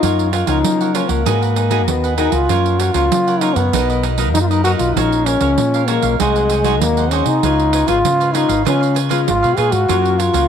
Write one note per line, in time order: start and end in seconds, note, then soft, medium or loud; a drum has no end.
0.00 0.61 F#2 medium
0.00 0.42 F#2 loud
0.00 0.28 A#3 medium
0.00 0.28 C#4 medium
0.00 0.29 D#4 medium
0.00 0.28 F4 medium
0.00 0.32 F4 medium
0.00 0.32 A#4 medium
0.00 0.33 C#5 medium
0.00 pandeiro medium
0.05 0.33 F#5 medium
0.19 pandeiro soft
0.33 0.46 F4 soft
0.33 0.49 F4 medium
0.33 0.46 A#4 soft
0.33 0.47 C#5 medium
0.33 0.47 F#5 medium
0.33 pandeiro medium
0.47 0.61 C#2 medium
0.47 0.89 F3 medium
0.47 0.90 A#3 medium
0.47 0.90 C#4 medium
0.47 0.97 D#4 medium
0.47 0.57 F4 medium
0.47 0.58 A#4 medium
0.47 0.58 C#5 medium
0.47 0.58 F#5 medium
0.47 pandeiro medium
0.64 1.23 C#3 medium
0.64 1.04 F#3 medium
0.64 pandeiro medium
0.81 0.94 A#4 soft
0.81 0.94 C#5 soft
0.81 0.95 F#5 soft
0.81 pandeiro soft
0.94 1.21 F3 medium
0.94 1.21 A#3 medium
0.94 1.21 C#4 medium
0.94 1.12 C#4 medium
0.94 1.09 F4 medium
0.94 1.09 A#4 medium
0.94 1.08 C#5 medium
0.94 1.07 F#5 medium
0.94 pandeiro medium
1.09 1.23 C#2 medium
1.09 1.90 A#3 medium
1.09 1.25 A#4 soft
1.09 1.24 C#5 soft
1.09 1.24 F#5 soft
1.09 pandeiro medium
1.26 1.88 G#2 medium
1.26 1.85 G#3 medium
1.26 1.55 B3 medium
1.26 1.40 D#4 medium
1.26 1.55 F#4 medium
1.26 1.40 G#4 medium
1.26 1.55 A#4 medium
1.26 1.41 B4 medium
1.26 1.41 F#5 medium
1.26 pandeiro medium
1.42 1.55 G#4 soft
1.42 1.56 B4 soft
1.42 1.56 F#5 soft
1.42 pandeiro soft
1.56 1.69 D#4 soft
1.56 1.70 G#4 medium
1.56 1.70 B4 soft
1.56 1.70 F#5 medium
1.56 pandeiro medium
1.70 2.13 B3 medium
1.70 1.81 D#4 medium
1.70 2.13 F#4 medium
1.70 1.81 G#4 medium
1.70 2.13 A#4 medium
1.70 1.81 B4 medium
1.70 1.81 F#5 medium
1.70 pandeiro medium
1.88 2.27 D#2 loud
1.88 2.46 D#3 medium
1.88 2.17 B3 medium
1.88 pandeiro medium
2.04 2.17 G#4 soft
2.04 2.18 B4 soft
2.04 2.18 F#5 soft
2.04 pandeiro soft
2.17 2.36 B3 medium
2.17 2.48 D#4 medium
2.17 2.35 D#4 medium
2.17 2.36 F#4 medium
2.17 2.48 G#4 medium
2.17 2.36 A#4 medium
2.17 2.49 B4 medium
2.17 2.49 F#5 medium
2.17 pandeiro medium
2.32 2.46 C#2 medium
2.32 2.81 F4 medium
2.32 pandeiro medium
2.49 3.08 F#2 medium
2.49 2.89 F#2 loud
2.49 2.91 F3 medium
2.49 2.91 A#3 medium
2.49 2.91 C#4 medium
2.49 2.79 F4 medium
2.49 2.80 A#4 medium
2.49 2.80 C#5 medium
2.49 2.80 F#5 medium
2.49 pandeiro medium
2.66 pandeiro soft
2.79 2.93 F4 medium
2.79 2.95 F#4 medium
2.79 2.94 A#4 medium
2.79 2.94 C#5 medium
2.79 2.94 F#5 medium
2.79 pandeiro medium
2.94 3.08 C#2 medium
2.94 3.36 F3 medium
2.94 3.36 A#3 medium
2.94 3.37 C#4 medium
2.94 3.42 F4 medium
2.94 3.04 F4 medium
2.94 3.04 A#4 medium
2.94 3.05 C#5 medium
2.94 3.05 F#5 medium
2.94 pandeiro medium
3.11 3.70 C#3 medium
3.11 3.51 F#3 medium
3.11 pandeiro medium
3.27 3.41 A#4 soft
3.27 3.42 C#5 soft
3.27 3.41 F#5 soft
3.27 pandeiro soft
3.41 3.60 F3 medium
3.41 3.60 A#3 soft
3.41 3.60 C#4 medium
3.41 3.57 D#4 medium
3.41 3.56 F4 medium
3.41 3.56 A#4 medium
3.41 3.56 C#5 medium
3.41 3.55 F#5 medium
3.41 pandeiro medium
3.55 3.70 F#2 medium
3.55 4.06 B3 medium
3.55 3.72 A#4 soft
3.55 3.72 C#5 soft
3.55 3.71 F#5 soft
3.55 pandeiro medium
3.73 4.34 B1 medium
3.73 4.32 B2 medium
3.73 4.14 F#3 medium
3.73 3.87 D#4 medium
3.73 4.15 D#4 medium
3.73 3.88 A#4 medium
3.73 3.88 B4 medium
3.73 3.88 D#5 medium
3.73 pandeiro medium
3.90 4.03 A#4 soft
3.90 4.03 B4 soft
3.90 4.03 D#5 soft
3.90 pandeiro soft
4.03 4.17 D#4 soft
4.03 4.17 A#4 soft
4.03 4.18 B4 medium
4.03 4.18 D#5 medium
4.03 pandeiro medium
4.18 4.60 F#3 medium
4.18 4.60 A#3 medium
4.18 4.28 D#4 medium
4.18 4.60 D#4 medium
4.18 4.28 A#4 medium
4.18 4.28 B4 medium
4.18 4.28 D#5 medium
4.18 pandeiro medium
4.34 4.74 F#2 loud
4.34 4.93 F#2 medium
4.34 4.43 D#4 medium
4.34 pandeiro medium
4.41 4.50 F4 medium
4.49 4.63 D#4 medium
4.49 4.64 A#4 soft
4.49 4.64 B4 soft
4.49 4.65 D#5 soft
4.49 pandeiro soft
4.64 4.91 F#3 medium
4.64 4.91 A#3 medium
4.64 4.94 D#4 medium
4.64 4.92 D#4 medium
4.64 4.71 F#4 medium
4.64 4.95 A#4 medium
4.64 4.95 B4 medium
4.64 4.95 D#5 medium
4.64 pandeiro medium
4.78 4.93 B1 medium
4.78 4.97 F4 medium
4.78 pandeiro medium
4.96 5.35 A#1 loud
4.96 5.55 A#2 medium
4.96 5.38 F3 medium
4.96 5.38 G#3 medium
4.96 5.38 C#4 medium
4.96 5.27 D#4 medium
4.96 5.25 F#4 medium
4.96 5.26 A#4 medium
4.96 5.27 C#5 medium
4.96 5.27 F5 medium
4.96 pandeiro medium
5.12 pandeiro soft
5.26 5.89 C#4 loud
5.26 5.39 F#4 soft
5.26 5.40 A#4 soft
5.26 5.40 C#5 medium
5.26 5.40 F5 medium
5.26 pandeiro medium
5.41 5.55 C#2 medium
5.41 5.83 F3 medium
5.41 5.83 G#3 medium
5.41 5.84 C#4 medium
5.41 5.51 F#4 medium
5.41 5.51 A#4 medium
5.41 5.51 C#5 medium
5.41 5.51 F5 medium
5.41 pandeiro medium
5.58 6.17 A#2 medium
5.58 5.97 A#2 medium
5.58 pandeiro medium
5.74 5.88 A#4 soft
5.74 5.88 C#5 soft
5.74 5.88 F5 soft
5.74 pandeiro soft
5.88 6.14 F3 medium
5.88 6.14 G#3 medium
5.88 6.19 A#3 medium
5.88 6.15 C#4 medium
5.88 6.03 F#4 medium
5.88 6.03 A#4 medium
5.88 6.02 C#5 medium
5.88 6.02 F5 medium
5.88 pandeiro medium
6.02 6.16 B1 medium
6.02 6.19 A#4 soft
6.02 6.18 C#5 soft
6.02 6.18 F5 soft
6.02 pandeiro medium
6.19 6.82 C2 medium
6.19 6.78 C3 medium
6.19 6.61 F#3 medium
6.19 6.82 G#3 medium
6.19 6.61 G#3 medium
6.19 6.61 D#4 medium
6.19 6.34 F#4 medium
6.19 6.34 G#4 medium
6.19 6.35 C5 medium
6.19 6.35 F#5 medium
6.19 pandeiro medium
6.36 6.50 G#4 soft
6.36 6.50 C5 soft
6.36 6.50 F#5 soft
6.36 pandeiro soft
6.50 6.63 F#4 soft
6.50 6.64 G#4 soft
6.50 6.64 C5 medium
6.50 6.64 F#5 medium
6.50 pandeiro medium
6.64 7.07 F#3 medium
6.64 7.07 G#3 medium
6.64 7.07 D#4 medium
6.64 6.74 F#4 medium
6.64 6.75 G#4 medium
6.64 6.75 C5 medium
6.64 6.75 F#5 medium
6.64 pandeiro medium
6.81 7.21 D#2 loud
6.81 7.40 C3 medium
6.81 7.13 A#3 medium
6.81 pandeiro medium
6.97 7.11 G#4 soft
6.97 7.12 C5 soft
6.97 7.11 F#5 soft
6.97 pandeiro soft
7.11 7.30 F#3 medium
7.11 7.30 G#3 medium
7.11 7.28 C#4 medium
7.11 7.30 D#4 medium
7.11 7.41 F#4 medium
7.11 7.42 G#4 medium
7.11 7.42 C5 medium
7.11 7.42 F#5 medium
7.11 pandeiro medium
7.26 7.40 C3 medium
7.26 7.90 D#4 medium
7.26 pandeiro medium
7.43 7.82 C#2 loud
7.43 8.02 C#3 medium
7.43 7.84 G#3 medium
7.43 7.85 B3 medium
7.43 7.72 F4 medium
7.43 7.85 F4 medium
7.43 7.72 B4 medium
7.43 7.73 C#5 medium
7.43 7.74 F5 medium
7.43 pandeiro medium
7.60 pandeiro soft
7.73 7.86 F4 soft
7.73 7.87 B4 soft
7.73 7.87 C#5 medium
7.73 7.87 F5 medium
7.73 pandeiro medium
7.87 8.01 G#1 medium
7.87 8.30 G#3 medium
7.87 8.30 B3 medium
7.87 7.97 F4 medium
7.87 8.36 F4 loud
7.87 8.30 F4 medium
7.87 7.97 B4 medium
7.87 7.98 C#5 medium
7.87 7.98 F5 medium
7.87 pandeiro medium
8.05 8.63 G#2 medium
8.05 8.44 C#3 medium
8.05 pandeiro medium
8.20 8.33 B4 soft
8.20 8.34 C#5 soft
8.20 8.34 F5 soft
8.20 pandeiro soft
8.34 8.53 G#3 medium
8.34 8.53 B3 medium
8.34 8.66 D#4 medium
8.34 8.49 F4 medium
8.34 8.53 F4 medium
8.34 8.49 B4 medium
8.34 8.48 C#5 medium
8.34 8.47 F5 medium
8.34 pandeiro medium
8.48 8.63 G#1 medium
8.48 8.65 B4 soft
8.48 8.64 C#5 soft
8.48 8.64 F5 soft
8.48 pandeiro medium
8.65 9.25 C#3 medium
8.65 9.29 C#3 medium
8.65 8.95 G#3 medium
8.65 8.95 B3 medium
8.65 8.98 C#4 medium
8.65 8.80 F4 medium
8.65 8.95 F4 medium
8.65 8.80 B4 medium
8.65 8.81 C#5 medium
8.65 8.80 F5 medium
8.65 pandeiro medium
8.81 8.94 B4 soft
8.81 8.95 C#5 soft
8.81 8.95 F5 soft
8.81 pandeiro soft
8.95 9.08 F4 medium
8.95 9.09 B4 medium
8.95 9.09 C#5 medium
8.95 9.09 F5 medium
8.95 pandeiro medium
9.09 9.53 G#3 medium
9.09 9.53 B3 medium
9.09 9.20 F4 medium
9.09 9.53 F4 medium
9.09 9.20 B4 medium
9.09 9.20 C#5 medium
9.09 9.20 F5 medium
9.09 pandeiro medium
9.28 9.41 G#1 loud
9.28 9.86 G#2 medium
9.28 9.59 F4 loud
9.28 pandeiro medium
9.43 9.57 B2 medium
9.43 9.56 B4 soft
9.43 9.57 C#5 soft
9.43 9.57 F5 medium
9.43 pandeiro soft
9.57 9.72 A#2 medium
9.57 9.84 G#3 soft
9.57 9.84 B3 medium
9.57 9.87 F4 medium
9.57 9.84 F4 medium
9.57 9.73 G#4 loud
9.57 9.88 B4 medium
9.57 9.88 C#5 medium
9.57 9.88 F5 medium
9.57 pandeiro medium
9.71 9.87 G#2 medium
9.71 10.20 F#4 loud
9.71 pandeiro medium
9.88 10.29 F#2 loud
9.88 10.48 F#3 medium
9.88 10.18 A#3 medium
9.88 10.18 C#4 medium
9.88 10.17 F4 medium
9.88 10.18 F4 medium
9.88 10.18 A#4 medium
9.88 10.19 C#5 medium
9.88 10.19 F#5 medium
9.88 pandeiro medium
10.05 pandeiro soft
10.19 10.48 F4 medium
10.19 10.32 F4 soft
10.19 10.33 A#4 medium
10.19 10.33 C#5 medium
10.19 10.33 F#5 medium
10.19 pandeiro medium
10.33 10.48 C#2 medium
10.33 10.48 A#3 medium
10.33 10.48 C#4 medium
10.33 10.43 F4 medium
10.33 10.48 F4 medium
10.33 10.44 A#4 medium
10.33 10.44 C#5 medium
10.33 10.44 F#5 medium
10.33 pandeiro medium